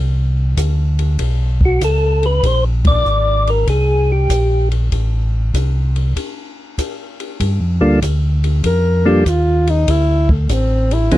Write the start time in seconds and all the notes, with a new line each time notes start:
Already playing: C2
0.57 D2, kick, hi-hat pedal, ride
0.99 ride
1.19 B1, kick, ride
1.61 kick
1.65 F#4
1.81 C#2 A4, kick, hi-hat pedal, ride
2.23 B4, ride
2.43 A#1 C5, kick, ride
2.85 D5, kick, ride
3.05 G#1, hi-hat pedal
3.47 A#4, ride
3.67 C2 G#4, kick, ride
4.12 G4
4.29 A#1, kick, hi-hat pedal, ride
4.71 ride
4.92 A1, kick, ride
5.54 C2, kick, hi-hat pedal, ride
5.96 ride
6.16 kick, ride
6.78 kick, hi-hat pedal, ride
7.20 ride
7.40 G2, kick, ride
7.61 F2
7.81 D2 G3 A#3 D4 F4 A4
8.02 D2, kick, hi-hat pedal, ride
8.44 ride
8.63 F2 A#4, kick, ride
9.06 G3 A#3 D4 F4 G4 A4
9.26 D#2 F4, kick, hi-hat pedal, ride
9.67 D#4, ride
9.87 D2 E4, kick, ride
10.29 A3, kick
10.49 A1 C4, kick, hi-hat pedal, ride
10.91 E4, ride
11.11 C#2 F3 B3 C#4 D#4 F4 G#4, kick, ride